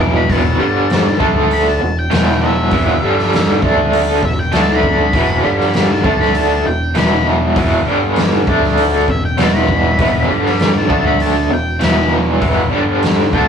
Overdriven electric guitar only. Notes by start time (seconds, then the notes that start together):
Already playing: E2 B2 E3
0.28 E2 B2 E3
0.59 G2 D3 G3
1.20 D3 A3 D4
1.81 E2 B2
2.11 E2 B2 E3
2.72 E2 B2 E3
3.02 G2 D3 G3
3.62 D3 A3 D4
4.22 E2 B2
4.52 D3 A3 D4
5.13 E2 B2 E3
5.43 G2 D3 G3
6.04 D3 A3 D4
6.66 E2 B2
6.95 E2 B2 E3
7.57 E2 B2 E3
7.86 G2 D3 G3
8.47 D3 A3 D4
9.08 E2 B2
9.37 E2 B2 E3
9.97 E2 B2 E3
10.28 G2 D3 G3
10.88 D3 A3 D4
11.50 E2 B2
11.79 E2 B2 E3
12.40 E2 B2 E3
12.70 G2 D3 G3
13.32 D3 A3 D4